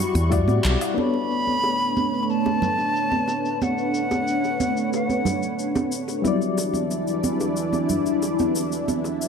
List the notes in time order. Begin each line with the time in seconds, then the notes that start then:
Already playing: G3 E4 F#4 D5 B5 C#6
0.15 E2, open hi-hat, cabasa
0.30 G3 E4 F#4 D5, kick, open hi-hat, cabasa, low woodblock
0.48 A2, high conga, cabasa
0.65 B1, clap, cabasa
0.81 open hi-hat, cabasa, low woodblock
0.94 A3 B3 D4 B4 C#5, high conga, cabasa
0.98 A4 C#5 B5
1.14 high bongo, cabasa
1.31 cabasa
1.47 high conga
1.64 high bongo, cabasa
1.80 cabasa
1.96 high bongo, high conga, cabasa
2.14 cabasa
2.23 B5
2.30 A5, cabasa
2.46 high bongo, high conga, cabasa
2.62 low conga, cabasa
2.79 high bongo, cabasa
2.96 cabasa
3.12 high conga, cabasa
3.28 high bongo, cabasa
3.45 cabasa
3.62 F#5, high bongo, high conga, cabasa
3.78 cabasa
3.94 cabasa
4.11 high bongo, high conga, cabasa
4.28 cabasa
4.44 high bongo, cabasa
4.60 high conga, cabasa
4.77 cabasa
4.93 F#5, high bongo, cabasa
5.09 high conga, cabasa
5.25 high bongo, low conga, cabasa
5.43 cabasa
5.59 cabasa
5.75 high bongo, high conga, cabasa
5.92 cabasa
6.08 high bongo, cabasa
6.22 E3 F#3 G3 D4 E4 D5, high conga, cabasa
6.28 D5
6.42 cabasa
6.58 high bongo, cabasa
6.73 high conga, cabasa
6.91 high bongo, cabasa
7.08 cabasa
7.24 high conga, cabasa
7.40 high bongo, cabasa
7.57 cabasa
7.73 high bongo, high conga, cabasa
7.89 low conga, cabasa
8.06 cabasa
8.22 high bongo, cabasa
8.39 high conga, cabasa
8.55 high bongo, cabasa
8.72 cabasa
8.88 E5, high conga, cabasa
9.04 high bongo, cabasa
9.22 cabasa